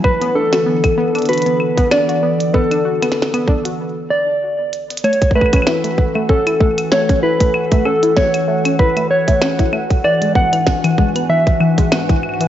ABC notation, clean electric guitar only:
X:1
M:4/4
L:1/8
Q:"Swing 16ths" 1/4=96
K:A
V:1 name="Clean electric guitar"
B A3 B2 d2 | A4- A d3 | c B3 A2 c B- | B A c2 B c3 |
d f2 z e3 z |]